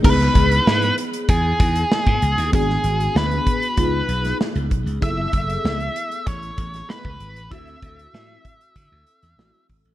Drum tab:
CC |x---------------|----------------|----------------|----------------|
HH |-xxx-xxxx-xx-xxx|x-xx-xxxx-xx-xxx|x-xx-xxxxxxx--xx|xxxx--xxx-xx-xox|
SD |-o--o-------o--o|-o--o------oo---|----o------oo---|----o------oo---|
BD |o-o-----o-o--o--|o-----o-o-----o-|o-o-----o-o--o--|o-o---o-o-----o-|